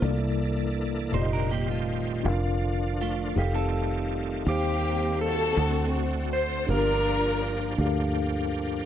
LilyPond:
<<
  \new Staff \with { instrumentName = "Alto saxophone" } { \time 6/8 \key f \mixolydian \tempo 4. = 54 r2. | r2. | g'4 a'4 r8 c''8 | bes'4. r4. | }
  \new Staff \with { instrumentName = "Tine electric piano" } { \time 6/8 \key f \mixolydian <bes d' e' a' d''>4 r8 <bes, f' g' d'' ees''>4 r8 | <d' f' bes' f''>4 r8 <ees' g' a' f''>4 r8 | <ees' g' c'' f''>4 r8 <d' a' c'' fis''>4 r8 | <d' g' bes' f''>4 r8 <d' g' a' bes' f''>4 r8 | }
  \new Staff \with { instrumentName = "Tine electric piano" } { \clef bass \time 6/8 \key f \mixolydian c4. r4. | r2. | ees4. d4. | g,4. r4. | }
  \new Staff \with { instrumentName = "String section" } { \time 6/8 \key f \mixolydian << { r2. | r2. | g'4 a'4 r8 c''8 | bes'4. r4. | } \\ { r2. | r2. | <bes c'>4 <c' ges'>4. r8 | <d' f'>4. r4. | } >> }
  \new Staff \with { instrumentName = "Clean electric guitar" } { \time 6/8 \key f \mixolydian <a f'>16 r4 r16 <ees' c''>16 <d' bes'>16 <bes g'>16 <a f'>8. | r4 <a f'>8 g'16 <c' a'>4~ <c' a'>16 | r2. | r2. | }
  \new Staff \with { instrumentName = "Tonewheel organ" } { \time 6/8 \key f \mixolydian <e bes d' a'>4. <ees g c' f'>4. | <d f d' e' f'>4. <ees g aes a f'>4. | <ees g c' f''>4. <d a c' fis'>4. | <f bes d' g'>2. | }
  \new Staff \with { instrumentName = "Fingered electric bass" } { \clef bass \time 6/8 \key f \mixolydian c,4. f,,4. | f,,4. f,,4. | ees,4. d,4. | g,,4. d,4. | }
>>